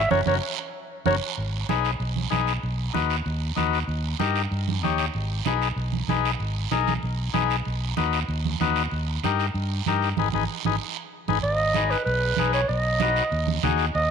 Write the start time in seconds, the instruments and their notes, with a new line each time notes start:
Already playing: clarinet E5
0.11 fingered electric bass F#1, transistor combo organ C#4 F#4 A#4, clarinet C#5, high conga, long guiro
0.26 fingered electric bass F#1, transistor combo organ C#4 F#4 A#4, clarinet C#5, high conga, long guiro
1.06 fingered electric bass F#1, transistor combo organ C#4 F#4 A#4, clarinet C#5, high conga, long guiro
1.37 fingered electric bass G#1, high conga, long guiro
1.69 fingered electric bass B1, transistor combo organ D#4 G#4 B4, high conga, short guiro
1.84 short guiro
2.00 fingered electric bass B1, high conga, long guiro
2.16 high conga
2.30 fingered electric bass B1, transistor combo organ D#4 G#4 B4, high conga, short guiro
2.47 short guiro
2.63 fingered electric bass B1, high conga, long guiro
2.93 fingered electric bass D#2, transistor combo organ D#4 F#4 B4, high conga, short guiro
3.10 short guiro
3.25 fingered electric bass D#2, high conga, long guiro
3.56 fingered electric bass D#2, transistor combo organ D#4 F#4 B4, high conga, short guiro
3.73 short guiro
3.88 fingered electric bass D#2, high conga, long guiro
4.19 fingered electric bass G2, transistor combo organ D#4 G4 A#4, high conga, short guiro
4.36 short guiro
4.51 fingered electric bass G2, high conga, long guiro
4.68 high conga
4.82 fingered electric bass D#2, transistor combo organ D#4 G4 C#5, high conga, short guiro
4.98 short guiro
5.14 fingered electric bass G#1, high conga, long guiro
5.45 fingered electric bass B1, transistor combo organ D#4 G#4 B4, high conga, short guiro
5.62 short guiro
5.76 fingered electric bass B1, high conga, long guiro
5.93 high conga
6.08 fingered electric bass B1, transistor combo organ D#4 G#4 B4, high conga, short guiro
6.25 short guiro
6.40 fingered electric bass G#1, high conga, long guiro
6.71 fingered electric bass B1, transistor combo organ D#4 G#4 A#4, high conga, short guiro
6.87 high conga, short guiro
7.03 fingered electric bass B1, high conga, long guiro
7.33 fingered electric bass B1, transistor combo organ D#4 G#4 B4, high conga, short guiro
7.50 short guiro
7.65 fingered electric bass B1, high conga, long guiro
7.97 fingered electric bass D#2, transistor combo organ D#4 F#4 B4, high conga, short guiro
8.13 short guiro
8.28 fingered electric bass D#2, high conga, long guiro
8.45 high conga
8.60 fingered electric bass D#2, transistor combo organ D#4 F#4 B4, high conga, short guiro
8.76 short guiro
8.91 fingered electric bass D#2, high conga, long guiro
9.24 fingered electric bass G2, transistor combo organ D#4 G4 A#4, high conga, short guiro
9.39 short guiro
9.54 fingered electric bass G2, high conga, long guiro
9.86 fingered electric bass G2, transistor combo organ D#4 G4 A#4, high conga, short guiro
10.02 short guiro
10.17 fingered electric bass G#1, transistor combo organ D#4 G#4 B4, high conga, long guiro
10.33 fingered electric bass G#1, transistor combo organ D#4 G#4 B4, high conga, long guiro
10.65 fingered electric bass G#1, transistor combo organ D#4 G#4 B4, high conga, long guiro
11.28 fingered electric bass G#1, transistor combo organ D#4 G#4 B4, high conga, long guiro
11.43 fingered electric bass G#1, clarinet D#5, high conga, long guiro
11.74 transistor combo organ D#4 G#4 B4, high conga, short guiro
11.91 clarinet B4, short guiro
12.05 fingered electric bass B1, clarinet B4, high conga, long guiro
12.37 fingered electric bass B1, transistor combo organ D#4 G#4 B4, high conga, short guiro
12.53 clarinet C#5, short guiro
12.68 fingered electric bass B1, clarinet D#5, high conga, long guiro
13.00 transistor combo organ D#4 F#4 B4, high conga, short guiro
13.16 short guiro
13.31 fingered electric bass D#2, high conga, long guiro
13.47 high conga
13.63 fingered electric bass D#2, transistor combo organ D#4 F#4 G#4, high conga, low conga, short guiro
13.78 short guiro
13.95 fingered electric bass D#2, clarinet D#5, high conga, long guiro